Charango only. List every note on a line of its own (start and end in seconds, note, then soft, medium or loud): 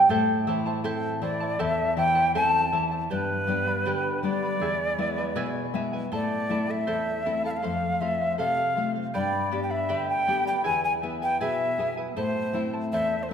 0.00 0.10 G5 medium
0.10 0.46 E4 medium
0.10 0.47 A4 loud
0.10 0.47 C5 medium
0.10 0.46 E5 medium
0.10 0.47 A5 medium
0.47 0.66 E4 medium
0.47 0.65 C5 medium
0.47 0.66 E5 medium
0.47 0.64 A5 medium
0.66 0.83 E4 medium
0.66 0.84 C5 medium
0.66 0.84 A5 medium
0.84 1.21 E4 loud
0.84 1.22 A4 medium
0.84 1.22 C5 medium
0.84 1.20 E5 medium
0.84 1.22 A5 loud
1.22 1.41 E4 medium
1.22 1.40 C5 medium
1.22 1.41 E5 medium
1.22 1.39 A5 medium
1.40 1.58 E4 soft
1.40 1.58 C5 soft
1.40 1.59 A5 medium
1.59 1.96 E4 medium
1.59 1.97 A4 medium
1.59 1.96 C5 medium
1.59 1.96 E5 medium
1.59 1.97 A5 medium
1.97 2.15 E4 medium
1.97 2.15 C5 medium
1.97 2.15 E5 medium
1.97 2.14 A5 medium
2.15 2.34 E4 soft
2.15 2.34 C5 soft
2.15 2.35 A5 medium
2.35 2.71 E4 medium
2.35 2.73 A4 medium
2.35 2.72 C5 medium
2.35 2.71 E5 medium
2.35 2.72 A5 medium
2.73 2.92 E4 medium
2.73 2.91 C5 medium
2.73 2.92 E5 soft
2.73 2.90 A5 medium
2.91 3.11 E4 soft
2.91 3.10 C5 soft
2.91 3.10 A5 medium
3.10 3.48 G4 medium
3.10 3.47 B4 medium
3.10 3.47 D5 medium
3.10 3.46 G5 medium
3.10 3.48 B5 medium
3.48 3.67 B4 medium
3.48 3.67 D5 medium
3.48 3.67 G5 soft
3.48 3.66 B5 medium
3.67 3.86 B4 soft
3.67 3.86 D5 soft
3.67 3.86 B5 soft
3.86 4.24 G4 medium
3.86 4.23 B4 medium
3.86 4.24 D5 medium
3.86 4.23 G5 medium
3.86 4.24 B5 medium
4.24 4.43 B4 medium
4.24 4.42 D5 medium
4.24 4.43 G5 soft
4.24 4.41 B5 medium
4.43 4.61 B4 soft
4.43 4.62 D5 soft
4.43 4.61 B5 soft
4.61 4.98 E4 medium
4.61 4.99 G#4 medium
4.61 4.99 B4 medium
4.61 4.98 E5 medium
4.61 4.99 G#5 medium
4.99 5.18 E4 medium
4.99 5.17 B4 medium
4.99 5.18 E5 medium
4.99 5.16 G#5 medium
5.18 5.35 E4 soft
5.18 5.35 B4 medium
5.18 5.35 G#5 medium
5.36 5.73 E4 medium
5.36 5.74 G#4 medium
5.36 5.74 B4 medium
5.36 5.73 E5 medium
5.36 5.74 G#5 medium
5.74 5.93 E4 medium
5.74 5.92 B4 medium
5.74 5.93 E5 medium
5.74 5.92 G#5 medium
5.93 6.11 E4 soft
5.93 6.12 B4 soft
5.93 6.12 G#5 medium
6.12 6.49 E4 medium
6.12 6.50 A4 medium
6.12 6.50 C5 medium
6.12 6.48 E5 medium
6.12 6.50 A5 medium
6.50 6.69 E4 medium
6.50 6.68 A4 medium
6.50 6.69 E5 medium
6.50 6.67 A5 medium
6.68 6.86 E4 soft
6.68 6.87 A4 soft
6.68 6.87 A5 soft
6.87 7.24 E4 medium
6.87 7.25 A4 medium
6.87 7.25 C5 medium
6.87 7.24 E5 medium
6.87 7.25 A5 medium
7.25 7.44 E4 medium
7.25 7.44 A4 soft
7.25 7.44 E5 soft
7.25 7.43 A5 medium
7.44 7.64 E4 soft
7.44 7.61 A4 soft
7.44 7.63 A5 medium
7.62 8.00 A4 medium
7.62 8.00 C5 medium
7.62 8.00 F5 medium
8.01 8.20 A4 medium
8.01 8.20 C5 medium
8.01 8.19 F5 medium
8.20 8.37 C5 soft
8.20 8.38 F5 soft
8.38 8.74 A4 medium
8.38 8.75 C5 medium
8.38 8.76 F5 medium
8.75 8.95 A4 soft
8.75 8.95 C5 soft
8.75 8.94 F5 medium
8.95 9.13 C5 soft
8.95 9.14 F5 soft
9.14 9.52 G4 medium
9.14 9.50 B4 medium
9.14 9.51 D5 medium
9.14 9.50 G5 medium
9.14 9.51 B5 medium
9.51 9.70 B4 medium
9.51 9.69 D5 medium
9.51 9.70 G5 medium
9.51 9.68 B5 medium
9.70 9.88 B4 soft
9.70 9.88 D5 soft
9.70 9.88 B5 soft
9.89 10.27 G4 medium
9.89 10.26 B4 medium
9.89 10.26 D5 medium
9.89 10.25 G5 medium
9.89 10.26 B5 medium
10.26 10.45 B4 soft
10.26 10.45 D5 medium
10.26 10.46 G5 medium
10.26 10.44 B5 medium
10.45 10.63 B4 soft
10.45 10.64 D5 soft
10.45 10.64 B5 medium
10.64 11.02 E4 medium
10.64 11.02 G#4 medium
10.64 11.02 B4 medium
10.64 11.01 E5 medium
10.64 11.02 G#5 medium
11.02 11.22 E4 medium
11.02 11.21 B4 medium
11.02 11.21 E5 medium
11.02 11.21 G#5 medium
11.22 11.40 E4 soft
11.22 11.40 B4 soft
11.22 11.40 G#5 soft
11.41 11.78 E4 medium
11.41 11.78 G#4 medium
11.41 11.78 B4 medium
11.41 11.78 E5 medium
11.41 11.79 G#5 medium
11.79 11.97 E4 medium
11.79 11.97 B4 medium
11.79 11.98 E5 medium
11.79 11.96 G#5 medium
11.97 12.16 E4 soft
11.97 12.16 B4 soft
11.97 12.16 G#5 medium
12.16 12.54 E4 medium
12.16 12.54 A4 medium
12.16 12.54 C5 medium
12.16 12.54 E5 medium
12.16 12.55 A5 medium
12.55 12.74 E4 medium
12.55 12.73 C5 medium
12.55 12.73 E5 medium
12.55 12.72 A5 medium
12.73 12.92 E4 soft
12.73 12.92 C5 soft
12.73 12.92 A5 soft
12.93 13.30 E4 medium
12.93 13.30 A4 medium
12.93 13.30 C5 medium
12.93 13.30 E5 medium
12.93 13.31 A5 medium